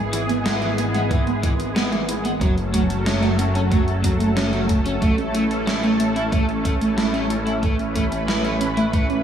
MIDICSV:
0, 0, Header, 1, 6, 480
1, 0, Start_track
1, 0, Key_signature, 3, "major"
1, 0, Tempo, 652174
1, 1775, Time_signature, 4, 2, 24, 8
1, 6796, End_track
2, 0, Start_track
2, 0, Title_t, "Synth arpeggio sound"
2, 0, Program_c, 0, 84
2, 0, Note_on_c, 0, 56, 75
2, 89, Note_off_c, 0, 56, 0
2, 96, Note_on_c, 0, 64, 75
2, 192, Note_off_c, 0, 64, 0
2, 216, Note_on_c, 0, 59, 80
2, 273, Note_off_c, 0, 59, 0
2, 335, Note_on_c, 0, 64, 88
2, 449, Note_off_c, 0, 64, 0
2, 575, Note_on_c, 0, 59, 74
2, 689, Note_off_c, 0, 59, 0
2, 696, Note_on_c, 0, 56, 76
2, 810, Note_off_c, 0, 56, 0
2, 816, Note_on_c, 0, 64, 80
2, 912, Note_off_c, 0, 64, 0
2, 936, Note_on_c, 0, 59, 78
2, 993, Note_off_c, 0, 59, 0
2, 1055, Note_on_c, 0, 64, 68
2, 1169, Note_off_c, 0, 64, 0
2, 1294, Note_on_c, 0, 59, 83
2, 1409, Note_off_c, 0, 59, 0
2, 1415, Note_on_c, 0, 56, 83
2, 1529, Note_off_c, 0, 56, 0
2, 1535, Note_on_c, 0, 64, 73
2, 1631, Note_off_c, 0, 64, 0
2, 1655, Note_on_c, 0, 59, 75
2, 1713, Note_off_c, 0, 59, 0
2, 1775, Note_on_c, 0, 61, 77
2, 1889, Note_off_c, 0, 61, 0
2, 2015, Note_on_c, 0, 57, 77
2, 2129, Note_off_c, 0, 57, 0
2, 2134, Note_on_c, 0, 54, 77
2, 2248, Note_off_c, 0, 54, 0
2, 2254, Note_on_c, 0, 61, 85
2, 2351, Note_off_c, 0, 61, 0
2, 2374, Note_on_c, 0, 57, 76
2, 2432, Note_off_c, 0, 57, 0
2, 2494, Note_on_c, 0, 61, 74
2, 2608, Note_off_c, 0, 61, 0
2, 2734, Note_on_c, 0, 57, 84
2, 2848, Note_off_c, 0, 57, 0
2, 2853, Note_on_c, 0, 54, 74
2, 2968, Note_off_c, 0, 54, 0
2, 2972, Note_on_c, 0, 61, 69
2, 3070, Note_off_c, 0, 61, 0
2, 3093, Note_on_c, 0, 57, 79
2, 3152, Note_off_c, 0, 57, 0
2, 3213, Note_on_c, 0, 61, 85
2, 3328, Note_off_c, 0, 61, 0
2, 3453, Note_on_c, 0, 57, 76
2, 3568, Note_off_c, 0, 57, 0
2, 3572, Note_on_c, 0, 54, 76
2, 3688, Note_off_c, 0, 54, 0
2, 3692, Note_on_c, 0, 57, 85
2, 3751, Note_off_c, 0, 57, 0
2, 3812, Note_on_c, 0, 61, 72
2, 3871, Note_off_c, 0, 61, 0
2, 3933, Note_on_c, 0, 64, 73
2, 4048, Note_off_c, 0, 64, 0
2, 4172, Note_on_c, 0, 61, 86
2, 4288, Note_off_c, 0, 61, 0
2, 4292, Note_on_c, 0, 57, 77
2, 4403, Note_off_c, 0, 57, 0
2, 4411, Note_on_c, 0, 57, 73
2, 4471, Note_off_c, 0, 57, 0
2, 4531, Note_on_c, 0, 61, 77
2, 4591, Note_off_c, 0, 61, 0
2, 4651, Note_on_c, 0, 64, 83
2, 4767, Note_off_c, 0, 64, 0
2, 4891, Note_on_c, 0, 61, 68
2, 5007, Note_off_c, 0, 61, 0
2, 5012, Note_on_c, 0, 57, 83
2, 5123, Note_off_c, 0, 57, 0
2, 5132, Note_on_c, 0, 57, 89
2, 5192, Note_off_c, 0, 57, 0
2, 5252, Note_on_c, 0, 61, 74
2, 5311, Note_off_c, 0, 61, 0
2, 5372, Note_on_c, 0, 64, 74
2, 5487, Note_off_c, 0, 64, 0
2, 5613, Note_on_c, 0, 61, 80
2, 5728, Note_off_c, 0, 61, 0
2, 5734, Note_on_c, 0, 57, 71
2, 5844, Note_off_c, 0, 57, 0
2, 5853, Note_on_c, 0, 57, 75
2, 5912, Note_off_c, 0, 57, 0
2, 5974, Note_on_c, 0, 61, 79
2, 6032, Note_off_c, 0, 61, 0
2, 6094, Note_on_c, 0, 64, 85
2, 6208, Note_off_c, 0, 64, 0
2, 6334, Note_on_c, 0, 61, 71
2, 6449, Note_off_c, 0, 61, 0
2, 6454, Note_on_c, 0, 57, 79
2, 6566, Note_off_c, 0, 57, 0
2, 6574, Note_on_c, 0, 57, 83
2, 6633, Note_off_c, 0, 57, 0
2, 6694, Note_on_c, 0, 61, 77
2, 6753, Note_off_c, 0, 61, 0
2, 6796, End_track
3, 0, Start_track
3, 0, Title_t, "Analog synth pad"
3, 0, Program_c, 1, 89
3, 0, Note_on_c, 1, 52, 85
3, 0, Note_on_c, 1, 56, 73
3, 0, Note_on_c, 1, 59, 78
3, 0, Note_on_c, 1, 68, 93
3, 1744, Note_off_c, 1, 52, 0
3, 1745, Note_off_c, 1, 68, 0
3, 1757, Note_off_c, 1, 56, 0
3, 1757, Note_off_c, 1, 59, 0
3, 1773, Note_on_c, 1, 57, 76
3, 1774, Note_on_c, 1, 69, 89
3, 1775, Note_on_c, 1, 54, 86
3, 1776, Note_on_c, 1, 61, 76
3, 3676, Note_off_c, 1, 54, 0
3, 3693, Note_on_c, 1, 52, 85
3, 5585, Note_off_c, 1, 69, 0
3, 5611, Note_on_c, 1, 71, 92
3, 6796, Note_off_c, 1, 52, 0
3, 6796, Note_off_c, 1, 57, 0
3, 6796, Note_off_c, 1, 61, 0
3, 6796, Note_off_c, 1, 71, 0
3, 6796, End_track
4, 0, Start_track
4, 0, Title_t, "Overdriven electric guitar"
4, 0, Program_c, 2, 29
4, 95, Note_on_c, 2, 52, 73
4, 155, Note_off_c, 2, 52, 0
4, 335, Note_on_c, 2, 59, 82
4, 425, Note_off_c, 2, 59, 0
4, 455, Note_on_c, 2, 52, 97
4, 515, Note_off_c, 2, 52, 0
4, 695, Note_on_c, 2, 59, 74
4, 731, Note_off_c, 2, 59, 0
4, 816, Note_on_c, 2, 52, 77
4, 905, Note_off_c, 2, 52, 0
4, 1055, Note_on_c, 2, 52, 74
4, 1115, Note_off_c, 2, 52, 0
4, 1297, Note_on_c, 2, 59, 80
4, 1386, Note_off_c, 2, 59, 0
4, 1415, Note_on_c, 2, 52, 95
4, 1475, Note_off_c, 2, 52, 0
4, 1656, Note_on_c, 2, 59, 72
4, 1691, Note_off_c, 2, 59, 0
4, 1776, Note_on_c, 2, 54, 78
4, 1865, Note_off_c, 2, 54, 0
4, 2015, Note_on_c, 2, 54, 76
4, 2075, Note_off_c, 2, 54, 0
4, 2255, Note_on_c, 2, 61, 85
4, 2345, Note_off_c, 2, 61, 0
4, 2375, Note_on_c, 2, 54, 102
4, 2435, Note_off_c, 2, 54, 0
4, 2615, Note_on_c, 2, 61, 74
4, 2651, Note_off_c, 2, 61, 0
4, 2735, Note_on_c, 2, 54, 80
4, 2825, Note_off_c, 2, 54, 0
4, 2974, Note_on_c, 2, 54, 73
4, 3035, Note_off_c, 2, 54, 0
4, 3215, Note_on_c, 2, 61, 82
4, 3305, Note_off_c, 2, 61, 0
4, 3334, Note_on_c, 2, 54, 96
4, 3395, Note_off_c, 2, 54, 0
4, 3575, Note_on_c, 2, 61, 77
4, 3611, Note_off_c, 2, 61, 0
4, 3695, Note_on_c, 2, 57, 77
4, 3785, Note_off_c, 2, 57, 0
4, 3936, Note_on_c, 2, 57, 69
4, 3995, Note_off_c, 2, 57, 0
4, 4175, Note_on_c, 2, 64, 81
4, 4265, Note_off_c, 2, 64, 0
4, 4295, Note_on_c, 2, 57, 93
4, 4355, Note_off_c, 2, 57, 0
4, 4535, Note_on_c, 2, 64, 75
4, 4571, Note_off_c, 2, 64, 0
4, 4656, Note_on_c, 2, 57, 83
4, 4745, Note_off_c, 2, 57, 0
4, 4895, Note_on_c, 2, 57, 77
4, 4955, Note_off_c, 2, 57, 0
4, 5136, Note_on_c, 2, 64, 77
4, 5225, Note_off_c, 2, 64, 0
4, 5254, Note_on_c, 2, 57, 97
4, 5315, Note_off_c, 2, 57, 0
4, 5496, Note_on_c, 2, 64, 74
4, 5532, Note_off_c, 2, 64, 0
4, 5616, Note_on_c, 2, 57, 77
4, 5705, Note_off_c, 2, 57, 0
4, 5855, Note_on_c, 2, 57, 73
4, 5915, Note_off_c, 2, 57, 0
4, 6097, Note_on_c, 2, 64, 88
4, 6186, Note_off_c, 2, 64, 0
4, 6216, Note_on_c, 2, 57, 97
4, 6275, Note_off_c, 2, 57, 0
4, 6456, Note_on_c, 2, 64, 75
4, 6492, Note_off_c, 2, 64, 0
4, 6576, Note_on_c, 2, 57, 82
4, 6666, Note_off_c, 2, 57, 0
4, 6796, End_track
5, 0, Start_track
5, 0, Title_t, "Analog synth bass"
5, 0, Program_c, 3, 38
5, 0, Note_on_c, 3, 32, 85
5, 1751, Note_off_c, 3, 32, 0
5, 1775, Note_on_c, 3, 30, 89
5, 3671, Note_off_c, 3, 30, 0
5, 3694, Note_on_c, 3, 33, 89
5, 6796, Note_off_c, 3, 33, 0
5, 6796, End_track
6, 0, Start_track
6, 0, Title_t, "Drums"
6, 96, Note_on_c, 9, 42, 94
6, 170, Note_off_c, 9, 42, 0
6, 217, Note_on_c, 9, 42, 51
6, 290, Note_off_c, 9, 42, 0
6, 337, Note_on_c, 9, 38, 127
6, 337, Note_on_c, 9, 42, 56
6, 410, Note_off_c, 9, 38, 0
6, 410, Note_off_c, 9, 42, 0
6, 457, Note_on_c, 9, 42, 26
6, 530, Note_off_c, 9, 42, 0
6, 576, Note_on_c, 9, 42, 97
6, 650, Note_off_c, 9, 42, 0
6, 696, Note_on_c, 9, 42, 55
6, 769, Note_off_c, 9, 42, 0
6, 816, Note_on_c, 9, 36, 122
6, 816, Note_on_c, 9, 42, 49
6, 889, Note_off_c, 9, 36, 0
6, 889, Note_off_c, 9, 42, 0
6, 935, Note_on_c, 9, 42, 29
6, 1009, Note_off_c, 9, 42, 0
6, 1056, Note_on_c, 9, 36, 111
6, 1056, Note_on_c, 9, 42, 98
6, 1129, Note_off_c, 9, 36, 0
6, 1129, Note_off_c, 9, 42, 0
6, 1175, Note_on_c, 9, 42, 51
6, 1249, Note_off_c, 9, 42, 0
6, 1295, Note_on_c, 9, 38, 123
6, 1295, Note_on_c, 9, 42, 53
6, 1369, Note_off_c, 9, 38, 0
6, 1369, Note_off_c, 9, 42, 0
6, 1416, Note_on_c, 9, 42, 29
6, 1490, Note_off_c, 9, 42, 0
6, 1536, Note_on_c, 9, 42, 90
6, 1609, Note_off_c, 9, 42, 0
6, 1655, Note_on_c, 9, 42, 53
6, 1729, Note_off_c, 9, 42, 0
6, 1775, Note_on_c, 9, 36, 125
6, 1775, Note_on_c, 9, 42, 52
6, 1849, Note_off_c, 9, 36, 0
6, 1849, Note_off_c, 9, 42, 0
6, 1896, Note_on_c, 9, 42, 28
6, 1970, Note_off_c, 9, 42, 0
6, 2015, Note_on_c, 9, 36, 64
6, 2015, Note_on_c, 9, 42, 92
6, 2088, Note_off_c, 9, 36, 0
6, 2089, Note_off_c, 9, 42, 0
6, 2135, Note_on_c, 9, 42, 53
6, 2209, Note_off_c, 9, 42, 0
6, 2255, Note_on_c, 9, 38, 126
6, 2255, Note_on_c, 9, 42, 54
6, 2328, Note_off_c, 9, 38, 0
6, 2328, Note_off_c, 9, 42, 0
6, 2375, Note_on_c, 9, 38, 37
6, 2375, Note_on_c, 9, 42, 26
6, 2449, Note_off_c, 9, 38, 0
6, 2449, Note_off_c, 9, 42, 0
6, 2495, Note_on_c, 9, 42, 95
6, 2568, Note_off_c, 9, 42, 0
6, 2614, Note_on_c, 9, 42, 53
6, 2688, Note_off_c, 9, 42, 0
6, 2734, Note_on_c, 9, 36, 117
6, 2734, Note_on_c, 9, 42, 50
6, 2808, Note_off_c, 9, 36, 0
6, 2808, Note_off_c, 9, 42, 0
6, 2854, Note_on_c, 9, 42, 27
6, 2928, Note_off_c, 9, 42, 0
6, 2974, Note_on_c, 9, 36, 66
6, 2974, Note_on_c, 9, 42, 86
6, 3047, Note_off_c, 9, 42, 0
6, 3048, Note_off_c, 9, 36, 0
6, 3094, Note_on_c, 9, 42, 50
6, 3168, Note_off_c, 9, 42, 0
6, 3214, Note_on_c, 9, 38, 123
6, 3214, Note_on_c, 9, 42, 53
6, 3288, Note_off_c, 9, 38, 0
6, 3288, Note_off_c, 9, 42, 0
6, 3334, Note_on_c, 9, 42, 27
6, 3408, Note_off_c, 9, 42, 0
6, 3454, Note_on_c, 9, 36, 107
6, 3454, Note_on_c, 9, 42, 90
6, 3528, Note_off_c, 9, 36, 0
6, 3528, Note_off_c, 9, 42, 0
6, 3574, Note_on_c, 9, 42, 55
6, 3648, Note_off_c, 9, 42, 0
6, 3694, Note_on_c, 9, 36, 116
6, 3695, Note_on_c, 9, 42, 49
6, 3767, Note_off_c, 9, 36, 0
6, 3768, Note_off_c, 9, 42, 0
6, 3814, Note_on_c, 9, 42, 27
6, 3888, Note_off_c, 9, 42, 0
6, 3935, Note_on_c, 9, 42, 91
6, 4008, Note_off_c, 9, 42, 0
6, 4055, Note_on_c, 9, 42, 49
6, 4128, Note_off_c, 9, 42, 0
6, 4176, Note_on_c, 9, 38, 122
6, 4176, Note_on_c, 9, 42, 52
6, 4250, Note_off_c, 9, 38, 0
6, 4250, Note_off_c, 9, 42, 0
6, 4295, Note_on_c, 9, 42, 25
6, 4369, Note_off_c, 9, 42, 0
6, 4415, Note_on_c, 9, 42, 91
6, 4489, Note_off_c, 9, 42, 0
6, 4535, Note_on_c, 9, 42, 51
6, 4608, Note_off_c, 9, 42, 0
6, 4654, Note_on_c, 9, 36, 120
6, 4655, Note_on_c, 9, 42, 50
6, 4727, Note_off_c, 9, 36, 0
6, 4729, Note_off_c, 9, 42, 0
6, 4775, Note_on_c, 9, 42, 26
6, 4849, Note_off_c, 9, 42, 0
6, 4894, Note_on_c, 9, 36, 99
6, 4895, Note_on_c, 9, 42, 83
6, 4967, Note_off_c, 9, 36, 0
6, 4969, Note_off_c, 9, 42, 0
6, 5016, Note_on_c, 9, 42, 49
6, 5089, Note_off_c, 9, 42, 0
6, 5135, Note_on_c, 9, 38, 117
6, 5135, Note_on_c, 9, 42, 54
6, 5209, Note_off_c, 9, 38, 0
6, 5209, Note_off_c, 9, 42, 0
6, 5255, Note_on_c, 9, 42, 26
6, 5329, Note_off_c, 9, 42, 0
6, 5375, Note_on_c, 9, 42, 87
6, 5449, Note_off_c, 9, 42, 0
6, 5496, Note_on_c, 9, 42, 50
6, 5569, Note_off_c, 9, 42, 0
6, 5614, Note_on_c, 9, 36, 118
6, 5615, Note_on_c, 9, 42, 51
6, 5688, Note_off_c, 9, 36, 0
6, 5689, Note_off_c, 9, 42, 0
6, 5736, Note_on_c, 9, 42, 27
6, 5810, Note_off_c, 9, 42, 0
6, 5855, Note_on_c, 9, 36, 58
6, 5855, Note_on_c, 9, 42, 87
6, 5928, Note_off_c, 9, 36, 0
6, 5929, Note_off_c, 9, 42, 0
6, 5976, Note_on_c, 9, 42, 48
6, 6050, Note_off_c, 9, 42, 0
6, 6097, Note_on_c, 9, 38, 116
6, 6097, Note_on_c, 9, 42, 51
6, 6170, Note_off_c, 9, 38, 0
6, 6170, Note_off_c, 9, 42, 0
6, 6216, Note_on_c, 9, 42, 24
6, 6290, Note_off_c, 9, 42, 0
6, 6336, Note_on_c, 9, 42, 85
6, 6410, Note_off_c, 9, 42, 0
6, 6456, Note_on_c, 9, 42, 51
6, 6529, Note_off_c, 9, 42, 0
6, 6575, Note_on_c, 9, 36, 112
6, 6576, Note_on_c, 9, 42, 47
6, 6649, Note_off_c, 9, 36, 0
6, 6649, Note_off_c, 9, 42, 0
6, 6696, Note_on_c, 9, 42, 26
6, 6770, Note_off_c, 9, 42, 0
6, 6796, End_track
0, 0, End_of_file